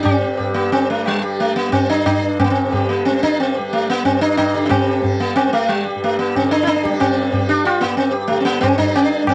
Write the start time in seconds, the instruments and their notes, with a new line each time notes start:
Already playing: tanpura G2 D3 G3
0.03 sitar C4, tabla na, tabla ge
0.21 tanpura G2, sitar G4
0.37 sitar G4, tabla tin, tabla ge
0.54 sitar A#3, tabla na
0.71 tanpura D3, sitar C4, tabla na
0.90 sitar A3
1.06 sitar G3, tabla na
1.19 tanpura G3, sitar G4
1.39 sitar A3, tabla tin
1.56 sitar A#3
1.68 tanpura G3, sitar C4, tabla na, tabla ge
1.89 sitar D4, tabla ge
2.06 sitar D4, tabla na, tabla ge
2.17 tanpura G2
2.23 tabla te
2.40 sitar C4, tabla na, tabla ge
2.44 sitar A#3
2.50 sitar C4
2.64 tanpura D3
2.72 sitar G4, tabla tin, tabla ge
2.89 sitar A#3
3.05 sitar C4, tabla te
3.11 tanpura G3, tabla te
3.23 sitar D4, tabla ke
3.32 tabla te
3.40 sitar C4, tabla na
3.57 tanpura G3, sitar G4
3.73 sitar A3, tabla tin
3.90 sitar A#3
4.05 tanpura G2, sitar C4, tabla na, tabla ge
4.21 sitar D4, tabla te
4.37 sitar D4, tabla na, tabla ge
4.54 tanpura D3, sitar G4, tabla te
4.66 sitar C4 D4
4.71 tabla na, tabla ge
4.87 sitar G4
5.01 tanpura G3, tabla tin, tabla ge
5.20 sitar A#3
5.36 sitar C4, tabla na
5.48 tanpura G3
5.53 sitar A3, tabla na
5.69 sitar G3, tabla na
5.86 sitar G4
5.95 tanpura G2
6.03 sitar A3, tabla tin
6.19 sitar A#3
6.36 sitar C4, tabla na, tabla ge
6.42 tanpura D3
6.51 sitar D4, tabla te
6.63 sitar D4 E4
6.68 tabla te
6.76 tabla te
6.83 sitar G4, tabla ke
6.89 tanpura G3
6.93 tabla te
7.00 sitar C4, tabla na, tabla ge
7.15 sitar G4
7.32 tanpura G3, sitar G4, tabla tin, tabla ge
7.49 sitar D4
7.65 sitar F4, tabla na
7.81 tanpura G2, sitar A#3, tabla na
7.97 sitar C4, tabla na
8.11 sitar G4
8.28 tanpura D3, sitar A3
8.32 tabla tin
8.40 sitar C4
8.45 sitar A#3
8.61 sitar C4, tabla na, tabla ge
8.77 tanpura G3, sitar D4, tabla ge
8.96 sitar D4, tabla na
9.23 tanpura G3
9.27 sitar C4, tabla na, tabla ge